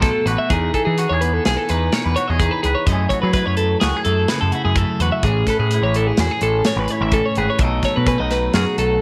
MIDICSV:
0, 0, Header, 1, 5, 480
1, 0, Start_track
1, 0, Tempo, 473186
1, 516, Time_signature, 5, 2, 24, 8
1, 9146, End_track
2, 0, Start_track
2, 0, Title_t, "Clean electric guitar"
2, 0, Program_c, 0, 27
2, 18, Note_on_c, 0, 69, 62
2, 261, Note_off_c, 0, 69, 0
2, 261, Note_on_c, 0, 71, 67
2, 389, Note_off_c, 0, 71, 0
2, 390, Note_on_c, 0, 76, 68
2, 508, Note_on_c, 0, 68, 80
2, 513, Note_off_c, 0, 76, 0
2, 750, Note_off_c, 0, 68, 0
2, 754, Note_on_c, 0, 69, 67
2, 861, Note_off_c, 0, 69, 0
2, 865, Note_on_c, 0, 68, 57
2, 1110, Note_off_c, 0, 68, 0
2, 1110, Note_on_c, 0, 73, 57
2, 1227, Note_on_c, 0, 71, 62
2, 1233, Note_off_c, 0, 73, 0
2, 1355, Note_off_c, 0, 71, 0
2, 1355, Note_on_c, 0, 69, 58
2, 1475, Note_off_c, 0, 69, 0
2, 1481, Note_on_c, 0, 68, 72
2, 1593, Note_off_c, 0, 68, 0
2, 1593, Note_on_c, 0, 69, 55
2, 1720, Note_off_c, 0, 69, 0
2, 1720, Note_on_c, 0, 71, 59
2, 1955, Note_off_c, 0, 71, 0
2, 1955, Note_on_c, 0, 73, 75
2, 2074, Note_off_c, 0, 73, 0
2, 2074, Note_on_c, 0, 71, 61
2, 2190, Note_on_c, 0, 73, 66
2, 2195, Note_off_c, 0, 71, 0
2, 2309, Note_off_c, 0, 73, 0
2, 2309, Note_on_c, 0, 75, 63
2, 2429, Note_on_c, 0, 68, 71
2, 2433, Note_off_c, 0, 75, 0
2, 2547, Note_off_c, 0, 68, 0
2, 2547, Note_on_c, 0, 71, 67
2, 2665, Note_off_c, 0, 71, 0
2, 2669, Note_on_c, 0, 68, 72
2, 2787, Note_on_c, 0, 73, 65
2, 2793, Note_off_c, 0, 68, 0
2, 2906, Note_off_c, 0, 73, 0
2, 2906, Note_on_c, 0, 75, 81
2, 3134, Note_off_c, 0, 75, 0
2, 3138, Note_on_c, 0, 73, 67
2, 3259, Note_off_c, 0, 73, 0
2, 3263, Note_on_c, 0, 71, 54
2, 3369, Note_off_c, 0, 71, 0
2, 3381, Note_on_c, 0, 71, 76
2, 3507, Note_off_c, 0, 71, 0
2, 3507, Note_on_c, 0, 73, 59
2, 3619, Note_off_c, 0, 73, 0
2, 3623, Note_on_c, 0, 69, 65
2, 3852, Note_off_c, 0, 69, 0
2, 3857, Note_on_c, 0, 68, 69
2, 4100, Note_off_c, 0, 68, 0
2, 4104, Note_on_c, 0, 69, 67
2, 4345, Note_off_c, 0, 69, 0
2, 4345, Note_on_c, 0, 71, 74
2, 4467, Note_off_c, 0, 71, 0
2, 4471, Note_on_c, 0, 69, 56
2, 4586, Note_off_c, 0, 69, 0
2, 4586, Note_on_c, 0, 66, 66
2, 4709, Note_off_c, 0, 66, 0
2, 4714, Note_on_c, 0, 68, 60
2, 4838, Note_off_c, 0, 68, 0
2, 4838, Note_on_c, 0, 69, 72
2, 5075, Note_off_c, 0, 69, 0
2, 5075, Note_on_c, 0, 71, 79
2, 5192, Note_off_c, 0, 71, 0
2, 5196, Note_on_c, 0, 76, 59
2, 5314, Note_on_c, 0, 68, 83
2, 5316, Note_off_c, 0, 76, 0
2, 5555, Note_off_c, 0, 68, 0
2, 5561, Note_on_c, 0, 69, 63
2, 5673, Note_off_c, 0, 69, 0
2, 5677, Note_on_c, 0, 68, 61
2, 5917, Note_off_c, 0, 68, 0
2, 5919, Note_on_c, 0, 73, 69
2, 6038, Note_off_c, 0, 73, 0
2, 6047, Note_on_c, 0, 69, 73
2, 6158, Note_off_c, 0, 69, 0
2, 6158, Note_on_c, 0, 68, 60
2, 6282, Note_off_c, 0, 68, 0
2, 6282, Note_on_c, 0, 66, 74
2, 6404, Note_off_c, 0, 66, 0
2, 6404, Note_on_c, 0, 68, 64
2, 6517, Note_off_c, 0, 68, 0
2, 6521, Note_on_c, 0, 69, 63
2, 6759, Note_off_c, 0, 69, 0
2, 6761, Note_on_c, 0, 73, 76
2, 6891, Note_off_c, 0, 73, 0
2, 6891, Note_on_c, 0, 71, 66
2, 7005, Note_off_c, 0, 71, 0
2, 7005, Note_on_c, 0, 73, 72
2, 7120, Note_off_c, 0, 73, 0
2, 7120, Note_on_c, 0, 76, 63
2, 7237, Note_on_c, 0, 69, 69
2, 7238, Note_off_c, 0, 76, 0
2, 7357, Note_off_c, 0, 69, 0
2, 7361, Note_on_c, 0, 73, 65
2, 7479, Note_off_c, 0, 73, 0
2, 7487, Note_on_c, 0, 68, 72
2, 7602, Note_off_c, 0, 68, 0
2, 7606, Note_on_c, 0, 73, 68
2, 7719, Note_off_c, 0, 73, 0
2, 7719, Note_on_c, 0, 75, 83
2, 7958, Note_off_c, 0, 75, 0
2, 7963, Note_on_c, 0, 73, 69
2, 8075, Note_on_c, 0, 71, 54
2, 8080, Note_off_c, 0, 73, 0
2, 8182, Note_off_c, 0, 71, 0
2, 8194, Note_on_c, 0, 71, 70
2, 8315, Note_off_c, 0, 71, 0
2, 8316, Note_on_c, 0, 75, 63
2, 8435, Note_on_c, 0, 71, 72
2, 8437, Note_off_c, 0, 75, 0
2, 8669, Note_off_c, 0, 71, 0
2, 8673, Note_on_c, 0, 68, 71
2, 8909, Note_off_c, 0, 68, 0
2, 8913, Note_on_c, 0, 69, 67
2, 9146, Note_off_c, 0, 69, 0
2, 9146, End_track
3, 0, Start_track
3, 0, Title_t, "Clean electric guitar"
3, 0, Program_c, 1, 27
3, 0, Note_on_c, 1, 54, 56
3, 0, Note_on_c, 1, 63, 43
3, 0, Note_on_c, 1, 66, 51
3, 13, Note_on_c, 1, 47, 69
3, 24, Note_on_c, 1, 57, 54
3, 269, Note_off_c, 1, 66, 0
3, 281, Note_on_c, 1, 66, 60
3, 495, Note_off_c, 1, 54, 0
3, 498, Note_off_c, 1, 63, 0
3, 501, Note_on_c, 1, 52, 61
3, 505, Note_off_c, 1, 47, 0
3, 510, Note_off_c, 1, 57, 0
3, 510, Note_on_c, 1, 63, 55
3, 518, Note_off_c, 1, 66, 0
3, 759, Note_on_c, 1, 68, 47
3, 995, Note_off_c, 1, 68, 0
3, 999, Note_on_c, 1, 66, 65
3, 1143, Note_off_c, 1, 66, 0
3, 1143, Note_on_c, 1, 68, 54
3, 1237, Note_on_c, 1, 59, 53
3, 1466, Note_off_c, 1, 68, 0
3, 1478, Note_on_c, 1, 68, 51
3, 1713, Note_off_c, 1, 63, 0
3, 1732, Note_on_c, 1, 63, 48
3, 1959, Note_on_c, 1, 47, 55
3, 2201, Note_off_c, 1, 68, 0
3, 2205, Note_on_c, 1, 66, 57
3, 2333, Note_off_c, 1, 66, 0
3, 2333, Note_on_c, 1, 68, 55
3, 2435, Note_off_c, 1, 63, 0
3, 2437, Note_off_c, 1, 47, 0
3, 2440, Note_off_c, 1, 52, 0
3, 2444, Note_on_c, 1, 52, 59
3, 2451, Note_on_c, 1, 63, 43
3, 2684, Note_off_c, 1, 68, 0
3, 2693, Note_on_c, 1, 71, 56
3, 2888, Note_off_c, 1, 59, 0
3, 2892, Note_off_c, 1, 63, 0
3, 2896, Note_off_c, 1, 71, 0
3, 2936, Note_on_c, 1, 42, 60
3, 2941, Note_off_c, 1, 52, 0
3, 2945, Note_on_c, 1, 54, 54
3, 2953, Note_on_c, 1, 57, 49
3, 2961, Note_on_c, 1, 64, 50
3, 2967, Note_on_c, 1, 68, 51
3, 3174, Note_off_c, 1, 68, 0
3, 3179, Note_on_c, 1, 66, 48
3, 3288, Note_off_c, 1, 66, 0
3, 3288, Note_on_c, 1, 68, 42
3, 3406, Note_off_c, 1, 64, 0
3, 3410, Note_on_c, 1, 64, 58
3, 3638, Note_off_c, 1, 54, 0
3, 3650, Note_on_c, 1, 54, 48
3, 3882, Note_off_c, 1, 68, 0
3, 3890, Note_on_c, 1, 66, 56
3, 4024, Note_off_c, 1, 66, 0
3, 4024, Note_on_c, 1, 68, 40
3, 4129, Note_off_c, 1, 57, 0
3, 4133, Note_on_c, 1, 57, 51
3, 4377, Note_on_c, 1, 49, 62
3, 4601, Note_off_c, 1, 64, 0
3, 4613, Note_on_c, 1, 64, 57
3, 4826, Note_off_c, 1, 42, 0
3, 4838, Note_on_c, 1, 42, 67
3, 4847, Note_off_c, 1, 57, 0
3, 4851, Note_on_c, 1, 57, 54
3, 5090, Note_off_c, 1, 68, 0
3, 5094, Note_on_c, 1, 66, 58
3, 5294, Note_off_c, 1, 54, 0
3, 5296, Note_off_c, 1, 64, 0
3, 5298, Note_off_c, 1, 49, 0
3, 5312, Note_off_c, 1, 42, 0
3, 5316, Note_on_c, 1, 45, 57
3, 5320, Note_off_c, 1, 57, 0
3, 5324, Note_on_c, 1, 61, 54
3, 5325, Note_off_c, 1, 66, 0
3, 5578, Note_on_c, 1, 71, 50
3, 5827, Note_on_c, 1, 64, 60
3, 6057, Note_on_c, 1, 52, 57
3, 6285, Note_off_c, 1, 71, 0
3, 6289, Note_on_c, 1, 68, 55
3, 6510, Note_off_c, 1, 61, 0
3, 6522, Note_on_c, 1, 61, 47
3, 6749, Note_off_c, 1, 45, 0
3, 6761, Note_on_c, 1, 45, 59
3, 7009, Note_off_c, 1, 64, 0
3, 7021, Note_on_c, 1, 64, 55
3, 7222, Note_off_c, 1, 45, 0
3, 7231, Note_off_c, 1, 61, 0
3, 7234, Note_on_c, 1, 45, 72
3, 7243, Note_on_c, 1, 61, 55
3, 7483, Note_off_c, 1, 68, 0
3, 7489, Note_on_c, 1, 71, 61
3, 7687, Note_off_c, 1, 45, 0
3, 7691, Note_off_c, 1, 61, 0
3, 7694, Note_off_c, 1, 71, 0
3, 7700, Note_off_c, 1, 64, 0
3, 7727, Note_off_c, 1, 52, 0
3, 7731, Note_on_c, 1, 47, 64
3, 7740, Note_on_c, 1, 57, 52
3, 7741, Note_on_c, 1, 54, 45
3, 7748, Note_on_c, 1, 63, 53
3, 7758, Note_on_c, 1, 69, 56
3, 7948, Note_off_c, 1, 69, 0
3, 7960, Note_on_c, 1, 69, 52
3, 8182, Note_off_c, 1, 63, 0
3, 8186, Note_on_c, 1, 61, 60
3, 8298, Note_off_c, 1, 61, 0
3, 8298, Note_on_c, 1, 63, 54
3, 8409, Note_off_c, 1, 54, 0
3, 8421, Note_on_c, 1, 54, 61
3, 8666, Note_off_c, 1, 69, 0
3, 8670, Note_on_c, 1, 66, 55
3, 8890, Note_off_c, 1, 57, 0
3, 8902, Note_on_c, 1, 57, 49
3, 9146, Note_off_c, 1, 47, 0
3, 9146, Note_off_c, 1, 54, 0
3, 9146, Note_off_c, 1, 57, 0
3, 9146, Note_off_c, 1, 63, 0
3, 9146, Note_off_c, 1, 66, 0
3, 9146, End_track
4, 0, Start_track
4, 0, Title_t, "Picked electric bass"
4, 0, Program_c, 2, 34
4, 261, Note_on_c, 2, 33, 77
4, 363, Note_off_c, 2, 33, 0
4, 513, Note_on_c, 2, 40, 68
4, 705, Note_off_c, 2, 40, 0
4, 878, Note_on_c, 2, 52, 64
4, 1068, Note_off_c, 2, 52, 0
4, 1120, Note_on_c, 2, 40, 64
4, 1405, Note_off_c, 2, 40, 0
4, 1487, Note_on_c, 2, 35, 75
4, 1578, Note_off_c, 2, 35, 0
4, 1723, Note_on_c, 2, 40, 69
4, 1911, Note_off_c, 2, 40, 0
4, 2086, Note_on_c, 2, 40, 76
4, 2177, Note_off_c, 2, 40, 0
4, 2329, Note_on_c, 2, 40, 77
4, 2514, Note_off_c, 2, 40, 0
4, 2681, Note_on_c, 2, 37, 77
4, 2774, Note_off_c, 2, 37, 0
4, 2909, Note_on_c, 2, 42, 75
4, 3103, Note_off_c, 2, 42, 0
4, 3277, Note_on_c, 2, 54, 72
4, 3467, Note_off_c, 2, 54, 0
4, 3515, Note_on_c, 2, 42, 68
4, 3802, Note_off_c, 2, 42, 0
4, 3882, Note_on_c, 2, 37, 80
4, 3975, Note_off_c, 2, 37, 0
4, 4116, Note_on_c, 2, 42, 70
4, 4307, Note_off_c, 2, 42, 0
4, 4483, Note_on_c, 2, 42, 74
4, 4576, Note_off_c, 2, 42, 0
4, 4717, Note_on_c, 2, 42, 79
4, 4907, Note_off_c, 2, 42, 0
4, 5071, Note_on_c, 2, 40, 76
4, 5168, Note_off_c, 2, 40, 0
4, 5307, Note_on_c, 2, 33, 75
4, 5502, Note_off_c, 2, 33, 0
4, 5672, Note_on_c, 2, 45, 66
4, 5864, Note_off_c, 2, 45, 0
4, 5903, Note_on_c, 2, 33, 74
4, 6195, Note_off_c, 2, 33, 0
4, 6273, Note_on_c, 2, 40, 77
4, 6370, Note_off_c, 2, 40, 0
4, 6509, Note_on_c, 2, 33, 65
4, 6703, Note_off_c, 2, 33, 0
4, 6861, Note_on_c, 2, 33, 83
4, 6963, Note_off_c, 2, 33, 0
4, 7109, Note_on_c, 2, 33, 88
4, 7303, Note_off_c, 2, 33, 0
4, 7478, Note_on_c, 2, 32, 83
4, 7573, Note_off_c, 2, 32, 0
4, 7699, Note_on_c, 2, 35, 75
4, 7897, Note_off_c, 2, 35, 0
4, 8087, Note_on_c, 2, 47, 73
4, 8274, Note_off_c, 2, 47, 0
4, 8315, Note_on_c, 2, 35, 75
4, 8602, Note_off_c, 2, 35, 0
4, 8665, Note_on_c, 2, 42, 84
4, 8765, Note_off_c, 2, 42, 0
4, 8906, Note_on_c, 2, 35, 70
4, 9101, Note_off_c, 2, 35, 0
4, 9146, End_track
5, 0, Start_track
5, 0, Title_t, "Drums"
5, 23, Note_on_c, 9, 42, 80
5, 25, Note_on_c, 9, 36, 109
5, 26, Note_on_c, 9, 38, 34
5, 125, Note_off_c, 9, 42, 0
5, 126, Note_off_c, 9, 36, 0
5, 128, Note_off_c, 9, 38, 0
5, 271, Note_on_c, 9, 42, 58
5, 373, Note_off_c, 9, 42, 0
5, 509, Note_on_c, 9, 36, 104
5, 509, Note_on_c, 9, 42, 70
5, 610, Note_off_c, 9, 42, 0
5, 611, Note_off_c, 9, 36, 0
5, 751, Note_on_c, 9, 36, 60
5, 752, Note_on_c, 9, 42, 52
5, 852, Note_off_c, 9, 36, 0
5, 853, Note_off_c, 9, 42, 0
5, 990, Note_on_c, 9, 42, 73
5, 1092, Note_off_c, 9, 42, 0
5, 1234, Note_on_c, 9, 42, 54
5, 1336, Note_off_c, 9, 42, 0
5, 1473, Note_on_c, 9, 42, 77
5, 1476, Note_on_c, 9, 38, 98
5, 1575, Note_off_c, 9, 42, 0
5, 1578, Note_off_c, 9, 38, 0
5, 1712, Note_on_c, 9, 42, 60
5, 1813, Note_off_c, 9, 42, 0
5, 1952, Note_on_c, 9, 42, 81
5, 1955, Note_on_c, 9, 38, 98
5, 2054, Note_off_c, 9, 42, 0
5, 2057, Note_off_c, 9, 38, 0
5, 2195, Note_on_c, 9, 42, 53
5, 2297, Note_off_c, 9, 42, 0
5, 2430, Note_on_c, 9, 36, 97
5, 2437, Note_on_c, 9, 42, 85
5, 2532, Note_off_c, 9, 36, 0
5, 2539, Note_off_c, 9, 42, 0
5, 2675, Note_on_c, 9, 42, 58
5, 2777, Note_off_c, 9, 42, 0
5, 2909, Note_on_c, 9, 36, 103
5, 2909, Note_on_c, 9, 42, 82
5, 3010, Note_off_c, 9, 36, 0
5, 3011, Note_off_c, 9, 42, 0
5, 3147, Note_on_c, 9, 36, 59
5, 3150, Note_on_c, 9, 42, 54
5, 3248, Note_off_c, 9, 36, 0
5, 3251, Note_off_c, 9, 42, 0
5, 3381, Note_on_c, 9, 42, 70
5, 3384, Note_on_c, 9, 36, 99
5, 3384, Note_on_c, 9, 38, 28
5, 3482, Note_off_c, 9, 42, 0
5, 3485, Note_off_c, 9, 36, 0
5, 3485, Note_off_c, 9, 38, 0
5, 3620, Note_on_c, 9, 42, 55
5, 3721, Note_off_c, 9, 42, 0
5, 3866, Note_on_c, 9, 42, 72
5, 3870, Note_on_c, 9, 38, 102
5, 3968, Note_off_c, 9, 42, 0
5, 3971, Note_off_c, 9, 38, 0
5, 4105, Note_on_c, 9, 42, 54
5, 4207, Note_off_c, 9, 42, 0
5, 4344, Note_on_c, 9, 42, 74
5, 4347, Note_on_c, 9, 38, 88
5, 4445, Note_off_c, 9, 42, 0
5, 4448, Note_off_c, 9, 38, 0
5, 4586, Note_on_c, 9, 42, 49
5, 4688, Note_off_c, 9, 42, 0
5, 4825, Note_on_c, 9, 36, 95
5, 4827, Note_on_c, 9, 42, 77
5, 4926, Note_off_c, 9, 36, 0
5, 4928, Note_off_c, 9, 42, 0
5, 5072, Note_on_c, 9, 42, 58
5, 5174, Note_off_c, 9, 42, 0
5, 5306, Note_on_c, 9, 36, 94
5, 5308, Note_on_c, 9, 42, 76
5, 5407, Note_off_c, 9, 36, 0
5, 5409, Note_off_c, 9, 42, 0
5, 5545, Note_on_c, 9, 36, 59
5, 5547, Note_on_c, 9, 42, 57
5, 5550, Note_on_c, 9, 38, 31
5, 5647, Note_off_c, 9, 36, 0
5, 5648, Note_off_c, 9, 42, 0
5, 5651, Note_off_c, 9, 38, 0
5, 5789, Note_on_c, 9, 42, 71
5, 5891, Note_off_c, 9, 42, 0
5, 6029, Note_on_c, 9, 42, 57
5, 6130, Note_off_c, 9, 42, 0
5, 6262, Note_on_c, 9, 42, 77
5, 6265, Note_on_c, 9, 38, 98
5, 6364, Note_off_c, 9, 42, 0
5, 6367, Note_off_c, 9, 38, 0
5, 6501, Note_on_c, 9, 42, 61
5, 6603, Note_off_c, 9, 42, 0
5, 6742, Note_on_c, 9, 42, 87
5, 6745, Note_on_c, 9, 38, 106
5, 6844, Note_off_c, 9, 42, 0
5, 6847, Note_off_c, 9, 38, 0
5, 6978, Note_on_c, 9, 42, 55
5, 7079, Note_off_c, 9, 42, 0
5, 7219, Note_on_c, 9, 42, 74
5, 7222, Note_on_c, 9, 36, 99
5, 7320, Note_off_c, 9, 42, 0
5, 7323, Note_off_c, 9, 36, 0
5, 7460, Note_on_c, 9, 42, 59
5, 7562, Note_off_c, 9, 42, 0
5, 7695, Note_on_c, 9, 42, 77
5, 7701, Note_on_c, 9, 36, 103
5, 7797, Note_off_c, 9, 42, 0
5, 7803, Note_off_c, 9, 36, 0
5, 7940, Note_on_c, 9, 42, 49
5, 7941, Note_on_c, 9, 36, 57
5, 7943, Note_on_c, 9, 38, 32
5, 8041, Note_off_c, 9, 42, 0
5, 8042, Note_off_c, 9, 36, 0
5, 8044, Note_off_c, 9, 38, 0
5, 8181, Note_on_c, 9, 36, 94
5, 8182, Note_on_c, 9, 42, 68
5, 8283, Note_off_c, 9, 36, 0
5, 8283, Note_off_c, 9, 42, 0
5, 8425, Note_on_c, 9, 42, 52
5, 8428, Note_on_c, 9, 38, 31
5, 8527, Note_off_c, 9, 42, 0
5, 8530, Note_off_c, 9, 38, 0
5, 8658, Note_on_c, 9, 42, 70
5, 8661, Note_on_c, 9, 38, 102
5, 8760, Note_off_c, 9, 42, 0
5, 8763, Note_off_c, 9, 38, 0
5, 8906, Note_on_c, 9, 42, 59
5, 9008, Note_off_c, 9, 42, 0
5, 9146, End_track
0, 0, End_of_file